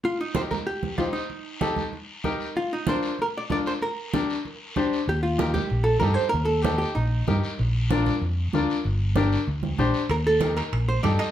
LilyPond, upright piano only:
\new Staff \with { instrumentName = "Upright piano" } { \time 4/4 \key ees \lydian \tempo 4 = 191 r4 <ees' g' bes'>8 r4. <ees' g' c''>8 r8 | r4 <ees' g' a'>8 r4. <ees' g' bes'>8 r8 | r4 <d' f' bes'>8 r4. <d' f' bes'>8 r8 | r4 <d' g' bes'>8 r4. <d' g' c''>8 r8 |
r4 <ees' g' bes'>8 r4. <ees' g' a'>8 r8 | r4 <ees' g' a'>8 r4. <ees' g' bes'>8 r8 | r4 <d' f' bes'>8 r4. <d' f' bes'>8 r8 | r4 <d' g' bes'>8 r4. <d' g' c''>8 r8 |
r4 <ees' g' bes'>8 r4. <ees' g' a'>8 r8 | }